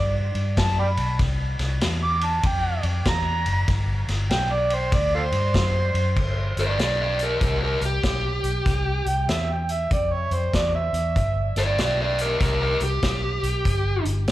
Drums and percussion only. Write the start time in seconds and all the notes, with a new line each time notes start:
0.35 ride
0.57 kick, snare, ride
0.97 ride
1.19 kick, snare, ride
1.59 snare, ride
1.81 snare, ride
2.21 ride
2.43 kick, ride
2.83 ride
3.05 kick, snare, ride
3.46 ride
3.68 kick, snare, ride
4.08 snare, ride
4.30 snare, ride
4.70 ride
4.92 kick, snare, ride
5.32 ride
5.54 kick, snare, ride
5.95 ride
6.17 kick, crash
6.57 closed hi-hat
6.79 snare, closed hi-hat
7.19 closed hi-hat
7.41 kick, closed hi-hat
7.81 closed hi-hat
8.03 kick, snare, closed hi-hat
8.44 closed hi-hat
8.66 kick, snare, closed hi-hat
9.06 closed hi-hat
9.29 snare, closed hi-hat
9.69 closed hi-hat
9.91 kick, closed hi-hat
10.31 closed hi-hat
10.54 kick, snare, closed hi-hat
10.94 closed hi-hat
11.16 kick, closed hi-hat
11.56 snare, closed hi-hat
11.78 snare, closed hi-hat
12.18 closed hi-hat
12.40 kick, snare, closed hi-hat
12.80 closed hi-hat
13.02 kick, snare, closed hi-hat
13.43 closed hi-hat
13.65 kick, closed hi-hat
14.05 closed hi-hat
14.27 snare, closed hi-hat